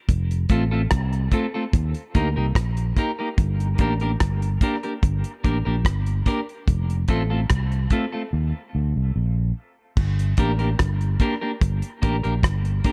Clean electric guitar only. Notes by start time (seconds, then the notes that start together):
0.50 A3 C4 F4 A4
0.71 A3 C4 F4 A4
1.32 A3 C4 F4 A4
1.54 A3 C4 F4 A4
2.15 A#3 D#4 G4 A#4
2.36 A#3 D#4 G4 A#4
2.97 A#3 D#4 G4 A#4
3.19 A#3 D#4 G4 A#4
3.79 A#3 D4 G4 A#4
4.01 A#3 D4 G4 A#4
4.62 A#3 D4 G4 A#4
4.83 A#3 D4 G4 A#4
5.44 A#3 D4 G4 A#4
5.65 A#3 D4 G4 A#4
6.26 A#3 D4 G4 A#4
7.08 A3 C4 F4 A4
7.30 A3 C4 F4 A4
7.91 A3 C4 F4 A4
8.12 A3 C4 F4 A4
10.38 A#3 D4 G4 A#4
10.59 A#3 D4 G4 A#4
11.20 A#3 D4 G4 A#4
11.41 A#3 D4 G4 A#4
12.02 A#3 D4 G4 A#4
12.23 A#3 D4 G4 A#4
12.84 A#3 D4 G4 A#4